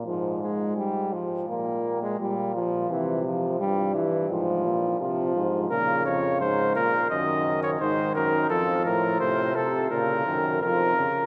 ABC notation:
X:1
M:4/4
L:1/16
Q:1/4=85
K:Bbm
V:1 name="Flugelhorn"
z16 | z16 | B2 d2 c2 B2 e3 d c2 B2 | =A2 B2 c2 A2 B4 B4 |]
V:2 name="Trombone" clef=bass
F,2 A,2 =G,2 F,2 B,3 A, G,2 F,2 | =E,2 F,2 =G,2 E,2 F,4 F,4 | D,6 z2 E,4 E,4 | F,4 C,4 D,2 E,2 F,2 D,2 |]
V:3 name="Euphonium" clef=bass
A,,6 z2 B,,4 B,,4 | C,4 =G,,4 A,,2 B,,2 C,2 A,,2 | B,,2 F,,2 A,,2 B,,2 G,,4 A,,2 G,,2 | F,,2 =A,,2 A,,2 C,2 B,,2 G,,2 F,,2 z2 |]